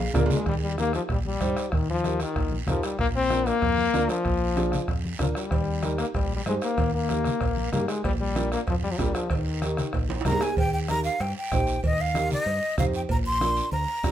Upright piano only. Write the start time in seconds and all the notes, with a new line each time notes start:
0.14 D4 F4 A#4
0.78 D#4 G4 A#4
1.41 D#4 G4 C5
2.04 D#4 G4 A#4
2.68 D#4 G4 A#4
3.30 D4 F4 A#4
3.94 D4 F4 A#4
4.56 D4 F4 G#4
5.19 D4 F4 A#4
5.82 D#4 G4 A#4
6.46 D#4 G4 C5
7.09 D#4 G4 A#4
7.72 D#4 G4 A#4
8.36 D4 F4 A#4
8.99 D4 F4 A#4
9.62 D#4 G4 A#4
10.25 D#4 G4 A#4
10.88 D#4 G4 A#4
11.52 D#4 G4 C5
12.15 D#4 G4 A#4
12.77 D#4 G4 C5
13.40 D4 F4 A#4
14.03 D4 F4 G4